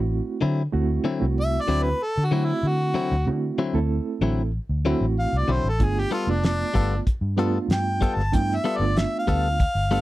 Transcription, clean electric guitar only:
0.41 0.61 D3 medium
0.41 0.61 F#3 medium
0.41 0.62 C4 medium
0.41 0.62 E4 medium
1.04 1.24 D3 medium
1.04 1.25 F#3 medium
1.04 1.25 C4 medium
1.04 1.25 E4 medium
1.68 1.88 D3 medium
1.68 1.88 F#3 medium
1.68 1.88 C4 medium
1.68 1.89 E4 medium
2.31 2.51 D3 medium
2.31 2.52 F#3 medium
2.31 2.52 C4 medium
2.31 2.52 E4 medium
2.94 3.14 D3 medium
2.94 3.14 F#3 medium
2.94 3.15 C4 medium
2.94 3.15 E4 medium
3.58 3.78 D3 medium
3.58 3.78 F#3 medium
3.58 3.78 C4 medium
3.58 3.78 E4 medium
4.22 4.41 D3 medium
4.22 4.41 F#3 medium
4.22 4.42 C4 medium
4.22 4.42 E4 medium
4.85 5.05 D3 medium
4.85 5.05 F#3 medium
4.85 5.05 C4 medium
4.85 5.05 E4 loud
5.48 5.68 D3 medium
5.48 5.68 F#3 medium
5.48 5.68 C4 medium
5.48 5.68 E4 medium
6.11 6.31 G3 medium
6.11 6.31 B3 medium
6.11 6.31 F4 medium
6.11 6.31 A4 medium
6.74 6.94 G3 medium
6.74 6.94 B3 medium
6.74 6.94 F4 medium
6.74 6.95 A4 medium
7.38 7.57 G3 medium
7.38 7.57 B3 medium
7.38 7.58 F4 loud
7.38 7.58 A4 medium
8.01 8.21 G3 medium
8.01 8.21 B3 medium
8.01 8.21 F4 medium
8.01 8.21 A4 medium
8.64 8.84 G3 medium
8.64 8.84 B3 medium
8.64 8.84 F4 medium
8.64 8.84 A4 medium
9.27 9.47 G3 medium
9.27 9.47 B3 medium
9.27 9.47 F4 medium
9.27 9.48 A4 medium
9.91 10.01 G3 medium
9.91 10.01 B3 medium
9.91 10.01 F4 medium
9.91 10.01 A4 medium

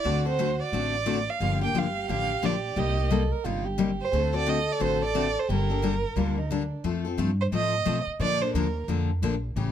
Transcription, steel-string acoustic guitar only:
0.04 0.25 D3 medium
0.04 0.25 A3 medium
0.04 0.25 C4 medium
0.04 0.25 F#4 medium
0.04 0.24 A4 medium
0.25 0.38 C4 soft
0.25 0.38 F#4 soft
0.25 0.38 A4 medium
0.39 0.50 D3 medium
0.39 0.50 A3 medium
0.39 0.50 C4 medium
0.39 0.50 F#4 medium
0.39 0.50 A4 medium
0.73 0.94 D3 medium
0.73 0.94 A3 medium
0.73 0.94 C4 medium
0.73 0.94 F#4 medium
0.73 0.94 A4 medium
1.06 1.17 D3 medium
1.06 1.17 A3 medium
1.06 1.18 C4 medium
1.06 1.18 F#4 medium
1.06 1.18 A4 medium
1.40 1.61 D3 medium
1.40 1.61 F3 medium
1.40 1.61 A#3 medium
1.40 1.61 D4 medium
1.40 1.60 G4 medium
1.61 1.74 A#3 soft
1.61 1.74 D4 soft
1.61 1.74 G4 medium
1.75 1.86 D3 medium
1.75 1.86 F3 medium
1.75 1.86 A#3 medium
1.75 1.86 D4 medium
1.75 1.86 G4 medium
2.09 2.30 D3 medium
2.09 2.30 F3 medium
2.09 2.30 A#3 medium
2.09 2.30 D4 medium
2.09 2.30 G4 medium
2.42 2.54 D3 medium
2.42 2.54 F3 medium
2.42 2.54 A#3 medium
2.42 2.54 D4 medium
2.42 2.54 G4 medium
2.76 2.97 C3 medium
2.76 2.97 G3 medium
2.76 2.97 A#3 medium
2.76 2.97 D#4 medium
2.76 2.96 G4 medium
2.98 3.10 A#3 soft
2.98 3.11 D#4 soft
2.98 3.10 G4 soft
3.10 3.22 C3 medium
3.10 3.22 G3 medium
3.10 3.22 A#3 medium
3.10 3.22 D#4 medium
3.10 3.22 G4 medium
3.44 3.66 C3 medium
3.44 3.66 G3 medium
3.44 3.66 A#3 medium
3.44 3.66 D#4 medium
3.44 3.66 G4 medium
3.78 3.89 C3 medium
3.78 3.90 G3 medium
3.78 3.90 A#3 medium
3.78 3.90 D#4 medium
3.78 3.90 G4 medium
4.13 4.33 D3 medium
4.13 4.33 A3 medium
4.13 4.33 C4 medium
4.13 4.33 F#4 medium
4.13 4.32 A4 medium
4.33 4.46 C4 soft
4.33 4.46 F#4 soft
4.33 4.46 A4 medium
4.46 4.58 D3 medium
4.46 4.58 A3 medium
4.46 4.58 C4 medium
4.46 4.58 F#4 medium
4.46 4.58 A4 medium
4.80 5.01 D3 medium
4.80 5.02 A3 medium
4.80 5.01 C4 medium
4.80 5.02 F#4 medium
4.80 5.02 A4 medium
5.15 5.26 D3 medium
5.15 5.26 A3 medium
5.15 5.26 C4 medium
5.15 5.26 F#4 loud
5.15 5.26 A4 medium
5.49 5.69 D3 medium
5.49 5.69 G3 medium
5.49 5.69 A#3 medium
5.49 5.69 D4 medium
5.49 5.69 A4 medium
5.70 5.82 A#3 soft
5.70 5.82 D4 medium
5.70 5.82 A4 medium
5.82 5.94 D3 medium
5.82 5.94 G3 medium
5.82 5.94 A#3 medium
5.82 5.94 D4 medium
5.82 5.94 A4 loud
6.16 6.37 D3 medium
6.16 6.38 G3 medium
6.16 6.38 A#3 medium
6.16 6.38 D4 medium
6.16 6.38 A4 medium
6.51 6.62 D3 medium
6.51 6.62 G3 medium
6.51 6.62 A#3 medium
6.51 6.62 D4 medium
6.51 6.62 A4 medium
6.84 7.05 F3 medium
6.84 7.05 A3 medium
6.84 7.05 C4 medium
6.84 7.05 F4 medium
6.84 7.03 A4 medium
7.05 7.17 C4 soft
7.05 7.18 F4 soft
7.05 7.18 A4 medium
7.18 7.29 F3 medium
7.18 7.30 A3 medium
7.18 7.30 C4 medium
7.18 7.30 F4 medium
7.18 7.30 A4 medium
7.52 7.73 F3 medium
7.52 7.74 A3 medium
7.52 7.74 C4 medium
7.52 7.74 F4 medium
7.52 7.74 A4 medium
7.85 7.97 F3 medium
7.85 7.97 A3 medium
7.85 7.98 C4 medium
7.85 7.98 F4 medium
7.85 7.98 A4 loud
8.20 8.40 D3 medium
8.20 8.41 F3 medium
8.20 8.41 A#3 medium
8.20 8.41 D4 medium
8.20 8.41 A4 medium
8.42 8.54 A#3 soft
8.42 8.55 D4 soft
8.42 8.54 A4 medium
8.55 8.66 D3 medium
8.55 8.66 F3 medium
8.55 8.66 A#3 medium
8.55 8.67 D4 medium
8.55 8.67 A4 medium
8.88 9.09 D3 medium
8.88 9.10 F3 medium
8.88 9.10 A#3 medium
8.88 9.10 D4 medium
8.88 9.10 A4 medium
9.23 9.34 D3 medium
9.23 9.34 F3 medium
9.23 9.34 A#3 medium
9.23 9.34 D4 medium
9.23 9.34 A4 medium
9.56 9.72 C#3 medium
9.56 9.72 E3 medium
9.56 9.72 A3 medium
9.56 9.72 C#4 medium
9.56 9.72 G4 medium

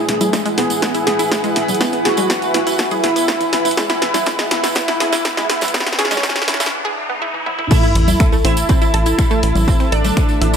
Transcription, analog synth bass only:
0.09 0.29 E1 loud
0.58 0.78 E1 medium
1.07 1.27 E1 medium
1.56 1.66 E1 medium
1.69 1.89 E1 loud
2.05 2.25 E1 loud
2.54 2.75 E1 medium
3.04 3.24 E1 loud
3.53 3.63 E1 medium
3.65 3.85 E1 loud
4.02 4.22 E1 loud
4.51 4.71 E1 medium
5.00 5.21 E1 loud
5.50 5.60 E1 medium
5.62 5.82 E1 loud
5.99 6.19 E1 loud
6.48 6.68 E1 medium
7.95 8.16 A1 loud
8.45 8.65 A1 medium
8.94 9.14 A1 loud
9.43 9.53 A1 medium
9.55 9.75 A1 loud
9.92 10.12 A1 loud
10.41 10.57 A1 medium

